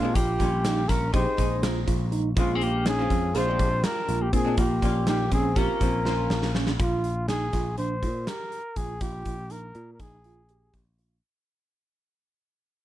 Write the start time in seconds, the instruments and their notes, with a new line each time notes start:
Already playing: picked electric bass A#2, clean electric guitar G#3, trumpet F4
0.02 hollow-body jazz guitar G#3 C4 D4 G4
0.15 picked electric bass A#1, clean electric guitar A#3, tine electric piano F4, trumpet G4, kick, closed hi-hat
0.39 picked electric bass A#1, hollow-body jazz guitar G3 A#3 C#4 F4, kick, closed hi-hat
0.65 tine electric piano D#4, snare, closed hi-hat
0.89 picked electric bass A#1, clean electric guitar C#4, tine electric piano C#4, trumpet A#4, kick, snare, closed hi-hat
1.12 picked electric bass A#1, hollow-body jazz guitar G#3 C4 D#4 G4, clean electric guitar D#4, tine electric piano G#4, trumpet C5, kick, closed hi-hat
1.37 picked electric bass A#1, hollow-body jazz guitar G#3 C4 D#4 G#4, kick, closed hi-hat
1.62 hollow-body jazz guitar G#3 C4 D#4 A#4, tine electric piano F4, snare, closed hi-hat
1.87 picked electric bass A#1, tine electric piano F4, kick, closed hi-hat
2.12 tine electric piano D#4, closed hi-hat
2.37 picked electric bass A#1, hollow-body jazz guitar G#3 C4 C#4 F4, clean electric guitar G#3, tine electric piano F4, trumpet F4, kick, closed hi-hat
2.55 clean electric guitar C4, trumpet G#4
2.61 clean electric guitar A#3, trumpet G4, closed hi-hat
2.86 clean electric guitar C#4, tine electric piano D#4, trumpet G#4, snare, closed hi-hat
2.99 hollow-body jazz guitar G#3 C#4 F4 C5
3.10 picked electric bass F2, tine electric piano C#4, kick, closed hi-hat
3.34 picked electric bass A#1, hollow-body jazz guitar G#3 C4 D4 F4, clean electric guitar F4, tine electric piano G#4, trumpet C5, snare, closed hi-hat
3.47 hollow-body jazz guitar G#3 C4 D4 G4
3.59 picked electric bass A#1, kick, closed hi-hat
3.84 clean electric guitar D4, tine electric piano F4, trumpet A#4, snare, closed hi-hat
4.09 picked electric bass A#1, tine electric piano F4, closed hi-hat
4.21 clean electric guitar A#3, trumpet G4
4.33 picked electric bass A#2, clean electric guitar C4, tine electric piano D4, trumpet G#4, kick, closed hi-hat
4.45 hollow-body jazz guitar G#3 C4 D4 G#4
4.57 picked electric bass A#1, clean electric guitar A#3, tine electric piano F4, trumpet G4, kick, closed hi-hat
4.82 picked electric bass A#1, hollow-body jazz guitar G3 A#3 C#4 F4, kick, closed hi-hat
5.07 clean electric guitar A#3, tine electric piano D#4, trumpet G4, snare, closed hi-hat
5.32 picked electric bass A#1, clean electric guitar C4, tine electric piano C#4, trumpet G#4, kick, closed hi-hat
5.55 picked electric bass A#1, hollow-body jazz guitar A#3 C4 C#4 F4, clean electric guitar C#4, tine electric piano G4, trumpet A#4, kick, snare, closed hi-hat
5.80 picked electric bass A#1, hollow-body jazz guitar A#3 C4 C#4 F4, kick, closed hi-hat
6.05 hollow-body jazz guitar A#3 C#4 F4 C5, tine electric piano F4, snare
6.30 picked electric bass A#1, tine electric piano F4, snare
6.42 snare
6.55 tine electric piano C#4, snare
6.67 snare
6.79 picked electric bass A#1, trumpet F4, tine electric piano F4, kick, closed hi-hat
7.04 closed hi-hat
7.28 tine electric piano D#4, trumpet G#4, snare, closed hi-hat
7.53 picked electric bass A#1, tine electric piano F4, kick, snare, closed hi-hat
7.78 picked electric bass A#1, tine electric piano D4, trumpet C5, closed hi-hat
8.03 picked electric bass A#2, tine electric piano F4, kick, closed hi-hat
8.27 tine electric piano G4, trumpet A#4, snare, closed hi-hat
8.52 closed hi-hat
8.76 picked electric bass A#1, tine electric piano F4, trumpet G#4, kick, closed hi-hat
9.01 picked electric bass A#1, tine electric piano F4, trumpet G4, kick, closed hi-hat
9.25 picked electric bass A#1, kick, closed hi-hat
9.50 tine electric piano D#4, trumpet A#4, closed hi-hat
9.75 picked electric bass A#2, tine electric piano F4, closed hi-hat
9.93 trumpet A#4
9.99 picked electric bass A#1, tine electric piano D#4, trumpet G#4, kick, closed hi-hat
10.24 tine electric piano F4, closed hi-hat
10.49 tine electric piano G4, closed hi-hat
10.73 picked electric bass A#1, kick, closed hi-hat
10.98 tine electric piano F4, closed hi-hat